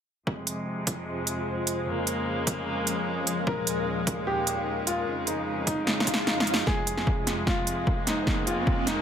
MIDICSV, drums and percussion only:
0, 0, Header, 1, 2, 480
1, 0, Start_track
1, 0, Key_signature, -4, "minor"
1, 0, Tempo, 400000
1, 324, Time_signature, 4, 2, 24, 8
1, 10820, End_track
2, 0, Start_track
2, 0, Title_t, "Drums"
2, 324, Note_on_c, 9, 36, 111
2, 444, Note_off_c, 9, 36, 0
2, 563, Note_on_c, 9, 42, 79
2, 683, Note_off_c, 9, 42, 0
2, 1044, Note_on_c, 9, 36, 100
2, 1044, Note_on_c, 9, 42, 79
2, 1164, Note_off_c, 9, 36, 0
2, 1164, Note_off_c, 9, 42, 0
2, 1523, Note_on_c, 9, 42, 76
2, 1643, Note_off_c, 9, 42, 0
2, 2004, Note_on_c, 9, 42, 82
2, 2124, Note_off_c, 9, 42, 0
2, 2484, Note_on_c, 9, 42, 75
2, 2604, Note_off_c, 9, 42, 0
2, 2964, Note_on_c, 9, 36, 105
2, 2964, Note_on_c, 9, 42, 73
2, 3084, Note_off_c, 9, 36, 0
2, 3084, Note_off_c, 9, 42, 0
2, 3444, Note_on_c, 9, 42, 76
2, 3564, Note_off_c, 9, 42, 0
2, 3924, Note_on_c, 9, 42, 78
2, 4044, Note_off_c, 9, 42, 0
2, 4164, Note_on_c, 9, 36, 121
2, 4284, Note_off_c, 9, 36, 0
2, 4404, Note_on_c, 9, 42, 76
2, 4524, Note_off_c, 9, 42, 0
2, 4884, Note_on_c, 9, 36, 107
2, 4884, Note_on_c, 9, 42, 74
2, 5004, Note_off_c, 9, 36, 0
2, 5004, Note_off_c, 9, 42, 0
2, 5364, Note_on_c, 9, 42, 72
2, 5484, Note_off_c, 9, 42, 0
2, 5844, Note_on_c, 9, 42, 77
2, 5964, Note_off_c, 9, 42, 0
2, 6324, Note_on_c, 9, 42, 69
2, 6444, Note_off_c, 9, 42, 0
2, 6804, Note_on_c, 9, 36, 105
2, 6804, Note_on_c, 9, 42, 76
2, 6924, Note_off_c, 9, 36, 0
2, 6924, Note_off_c, 9, 42, 0
2, 7044, Note_on_c, 9, 38, 68
2, 7164, Note_off_c, 9, 38, 0
2, 7204, Note_on_c, 9, 38, 68
2, 7284, Note_on_c, 9, 36, 64
2, 7284, Note_on_c, 9, 42, 76
2, 7324, Note_off_c, 9, 38, 0
2, 7364, Note_on_c, 9, 38, 81
2, 7404, Note_off_c, 9, 36, 0
2, 7404, Note_off_c, 9, 42, 0
2, 7484, Note_off_c, 9, 38, 0
2, 7524, Note_on_c, 9, 38, 85
2, 7644, Note_off_c, 9, 38, 0
2, 7684, Note_on_c, 9, 38, 92
2, 7764, Note_on_c, 9, 42, 72
2, 7804, Note_off_c, 9, 38, 0
2, 7844, Note_on_c, 9, 38, 101
2, 7884, Note_off_c, 9, 42, 0
2, 7964, Note_off_c, 9, 38, 0
2, 8004, Note_on_c, 9, 36, 101
2, 8004, Note_on_c, 9, 38, 49
2, 8124, Note_off_c, 9, 36, 0
2, 8124, Note_off_c, 9, 38, 0
2, 8244, Note_on_c, 9, 42, 80
2, 8364, Note_off_c, 9, 42, 0
2, 8370, Note_on_c, 9, 38, 39
2, 8484, Note_on_c, 9, 36, 97
2, 8490, Note_off_c, 9, 38, 0
2, 8604, Note_off_c, 9, 36, 0
2, 8724, Note_on_c, 9, 38, 51
2, 8724, Note_on_c, 9, 42, 81
2, 8844, Note_off_c, 9, 38, 0
2, 8844, Note_off_c, 9, 42, 0
2, 8964, Note_on_c, 9, 36, 97
2, 8964, Note_on_c, 9, 38, 55
2, 9084, Note_off_c, 9, 36, 0
2, 9084, Note_off_c, 9, 38, 0
2, 9204, Note_on_c, 9, 42, 81
2, 9324, Note_off_c, 9, 42, 0
2, 9444, Note_on_c, 9, 36, 93
2, 9564, Note_off_c, 9, 36, 0
2, 9684, Note_on_c, 9, 38, 57
2, 9684, Note_on_c, 9, 42, 80
2, 9804, Note_off_c, 9, 38, 0
2, 9804, Note_off_c, 9, 42, 0
2, 9924, Note_on_c, 9, 36, 101
2, 9924, Note_on_c, 9, 38, 55
2, 10044, Note_off_c, 9, 36, 0
2, 10044, Note_off_c, 9, 38, 0
2, 10164, Note_on_c, 9, 42, 78
2, 10284, Note_off_c, 9, 42, 0
2, 10404, Note_on_c, 9, 36, 99
2, 10524, Note_off_c, 9, 36, 0
2, 10644, Note_on_c, 9, 38, 63
2, 10644, Note_on_c, 9, 42, 78
2, 10764, Note_off_c, 9, 38, 0
2, 10764, Note_off_c, 9, 42, 0
2, 10820, End_track
0, 0, End_of_file